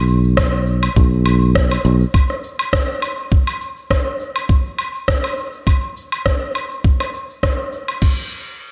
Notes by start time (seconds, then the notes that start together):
Already playing: B1
0.08 shaker
0.24 shaker
0.37 kick, cross-stick, low woodblock, shaker
0.53 shaker
0.67 shaker
0.83 low woodblock, shaker
0.96 B1, kick, shaker
1.12 shaker
1.26 low woodblock, shaker
1.42 shaker
1.55 kick, cross-stick, shaker
1.71 low woodblock, shaker
1.85 B1, shaker
2.01 shaker
2.14 kick, low woodblock, shaker
2.30 cross-stick, shaker
2.44 shaker
2.59 low woodblock, shaker
2.73 kick, cross-stick, shaker
2.89 shaker
3.02 low woodblock, shaker
3.18 shaker
3.32 kick, shaker
3.47 low woodblock, shaker
3.61 shaker
3.77 shaker
3.91 kick, cross-stick, low woodblock, shaker
4.07 shaker
4.20 shaker
4.36 low woodblock, shaker
4.49 kick, shaker
4.65 shaker
4.79 low woodblock, shaker
4.94 shaker
5.08 kick, cross-stick, shaker
5.24 low woodblock, shaker
5.38 shaker
5.54 shaker
5.67 kick, low woodblock, shaker
5.83 shaker
5.97 shaker
6.12 low woodblock, shaker
6.26 kick, cross-stick, shaker
6.42 shaker
6.55 low woodblock, shaker
6.71 shaker
6.84 kick, shaker
7.00 cross-stick, low woodblock, shaker
7.14 shaker
7.30 shaker
7.43 kick, cross-stick, low woodblock, shaker
7.59 shaker
7.73 shaker
7.88 low woodblock, shaker
8.02 kick, crash